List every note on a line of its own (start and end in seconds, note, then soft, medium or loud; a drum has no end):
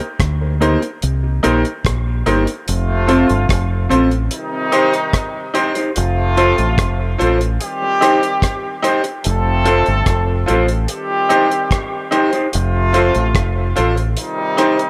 0.00 closed hi-hat soft
0.20 0.76 D2 medium
0.20 kick loud
0.20 cross-stick loud
0.20 closed hi-hat medium
0.41 0.49 A#4 soft
0.41 0.49 C5 soft
0.60 0.79 A#3 medium
0.60 0.80 D#4 medium
0.60 0.79 D#4 medium
0.60 0.79 G4 medium
0.60 0.80 A#4 medium
0.60 0.80 C5 loud
0.60 closed hi-hat medium
0.82 muted clean electric guitar stroke soft
0.82 closed hi-hat medium
1.02 1.40 C2 loud
1.02 closed hi-hat medium
1.23 muted clean electric guitar stroke soft
1.43 1.63 A#1 medium
1.43 1.61 A#3 loud
1.43 1.62 D#4 medium
1.43 1.61 D#4 medium
1.43 1.62 G4 loud
1.43 1.62 A#4 medium
1.43 1.63 C5 medium
1.43 closed hi-hat medium
1.65 closed hi-hat soft
1.85 2.22 A#1 medium
1.85 kick loud
1.85 cross-stick loud
1.85 closed hi-hat loud
2.26 2.45 G1 medium
2.26 2.44 A#3 medium
2.26 2.45 D#4 medium
2.26 2.44 D#4 medium
2.26 2.44 G4 medium
2.26 2.45 A#4 medium
2.26 2.45 C5 medium
2.26 closed hi-hat medium
2.46 muted clean electric guitar stroke soft
2.46 closed hi-hat medium
2.67 3.23 F1 medium
2.67 3.88 C3 medium
2.67 3.88 F3 medium
2.67 3.88 A3 medium
2.67 3.88 F4 medium
2.67 closed hi-hat loud
3.07 3.26 C4 medium
3.07 3.26 F4 medium
3.07 3.26 A4 medium
3.07 3.27 C5 loud
3.07 closed hi-hat medium
3.29 3.48 G1 loud
3.29 closed hi-hat medium
3.49 3.86 F1 medium
3.49 kick loud
3.49 cross-stick loud
3.49 closed hi-hat medium
3.70 3.78 A4 soft
3.70 3.78 C5 soft
3.89 4.28 A1 medium
3.89 4.08 C4 medium
3.89 4.08 F4 medium
3.89 4.08 A4 medium
3.89 4.09 C5 loud
3.89 closed hi-hat medium
4.11 closed hi-hat soft
4.31 5.52 C3 medium
4.31 5.52 D#3 medium
4.31 5.52 G3 medium
4.31 5.52 D#4 medium
4.31 closed hi-hat medium
4.72 4.91 D#4 medium
4.72 4.90 D#4 medium
4.72 4.90 G4 medium
4.72 4.91 G4 medium
4.72 4.91 C5 loud
4.72 4.91 C5 medium
4.72 closed hi-hat medium
4.93 closed hi-hat medium
5.13 kick loud
5.13 cross-stick loud
5.13 closed hi-hat medium
5.54 5.73 D#4 medium
5.54 5.72 D#4 medium
5.54 5.73 G4 medium
5.54 5.72 G4 medium
5.54 5.73 C5 loud
5.54 5.72 C5 medium
5.54 closed hi-hat medium
5.75 5.90 D#4 soft
5.75 5.89 G4 medium
5.75 5.89 C5 medium
5.75 closed hi-hat medium
5.96 6.52 F1 loud
5.96 7.17 C3 medium
5.96 7.17 F3 medium
5.96 7.17 A3 medium
5.96 7.17 F4 loud
5.96 closed hi-hat loud
6.36 6.55 F4 medium
6.36 6.55 A4 medium
6.36 6.56 C5 loud
6.36 6.55 C5 medium
6.36 closed hi-hat medium
6.58 6.76 A1 medium
6.58 closed hi-hat soft
6.78 7.15 F1 medium
6.78 kick loud
6.78 cross-stick loud
6.78 closed hi-hat medium
6.99 7.07 A4 soft
6.99 7.07 C5 soft
7.18 7.57 A1 loud
7.18 7.37 F4 medium
7.18 7.37 A4 medium
7.18 7.38 C5 loud
7.18 7.38 C5 medium
7.18 closed hi-hat medium
7.41 muted clean electric guitar stroke medium
7.41 closed hi-hat medium
7.60 8.81 D#3 medium
7.60 8.81 G3 loud
7.60 8.81 C4 medium
7.60 8.81 G4 loud
7.60 closed hi-hat medium
7.82 muted clean electric guitar stroke medium
8.01 8.20 D#4 medium
8.01 8.19 D#4 medium
8.01 8.20 G4 medium
8.01 8.20 C5 loud
8.01 8.20 C5 medium
8.01 cross-stick medium
8.01 closed hi-hat medium
8.23 closed hi-hat medium
8.42 kick loud
8.42 cross-stick loud
8.42 closed hi-hat medium
8.82 9.01 D#4 medium
8.82 9.02 G4 medium
8.82 9.01 G4 medium
8.82 9.02 C5 loud
8.82 9.02 C5 medium
8.82 closed hi-hat medium
9.04 muted clean electric guitar stroke soft
9.04 closed hi-hat medium
9.24 9.81 F1 medium
9.24 10.45 F3 medium
9.24 10.45 A3 medium
9.24 10.45 C4 medium
9.24 10.45 A4 loud
9.24 closed hi-hat loud
9.64 9.83 F4 medium
9.64 9.84 A4 medium
9.64 9.84 C5 medium
9.64 closed hi-hat medium
9.86 10.05 G1 medium
9.86 closed hi-hat soft
10.06 10.44 F1 medium
10.06 kick loud
10.06 cross-stick loud
10.06 closed hi-hat medium
10.27 10.35 A4 soft
10.27 10.35 C5 soft
10.46 10.85 A1 loud
10.46 10.65 F4 medium
10.46 10.66 A4 medium
10.46 10.66 C5 medium
10.46 10.66 C5 loud
10.46 closed hi-hat medium
10.68 closed hi-hat medium
10.88 12.09 D#3 medium
10.88 12.09 G3 medium
10.88 12.09 C4 medium
10.88 12.09 G4 loud
10.88 closed hi-hat medium
11.29 11.48 D#4 medium
11.29 11.47 D#4 medium
11.29 11.48 G4 medium
11.29 11.49 C5 loud
11.29 11.48 C5 medium
11.29 closed hi-hat medium
11.51 closed hi-hat medium
11.71 kick loud
11.71 cross-stick loud
11.71 closed hi-hat medium
12.11 12.30 D#4 medium
12.11 12.29 D#4 medium
12.11 12.30 G4 medium
12.11 12.30 G4 loud
12.11 12.31 C5 loud
12.11 12.30 C5 medium
12.11 closed hi-hat medium
12.33 12.47 D#4 medium
12.33 12.46 G4 medium
12.33 12.46 C5 medium
12.33 closed hi-hat medium
12.52 13.09 F1 loud
12.52 13.73 C3 medium
12.52 13.73 F3 medium
12.52 13.73 A3 medium
12.52 13.73 F4 loud
12.52 closed hi-hat loud
12.93 13.12 F4 medium
12.93 13.12 A4 medium
12.93 13.12 C5 medium
12.93 13.13 C5 loud
12.93 closed hi-hat medium
13.15 13.33 A1 loud
13.15 closed hi-hat soft
13.35 13.72 F1 medium
13.35 kick loud
13.35 cross-stick loud
13.35 closed hi-hat medium
13.55 13.64 A4 soft
13.55 13.64 C5 soft
13.76 14.14 A1 medium
13.76 13.94 F4 medium
13.76 13.94 A4 medium
13.76 13.95 C5 loud
13.76 13.94 C5 loud
13.76 closed hi-hat medium
13.97 muted clean electric guitar stroke soft
13.97 closed hi-hat soft
14.17 14.90 C3 loud
14.17 14.90 D#3 medium
14.17 14.90 G3 medium
14.17 14.90 D#4 medium
14.17 closed hi-hat medium
14.38 muted clean electric guitar stroke soft
14.57 14.76 D#4 loud
14.57 14.76 D#4 medium
14.57 14.77 G4 medium
14.57 14.76 G4 medium
14.57 14.77 C5 loud
14.57 14.77 C5 medium
14.57 cross-stick medium
14.57 closed hi-hat medium
14.79 closed hi-hat medium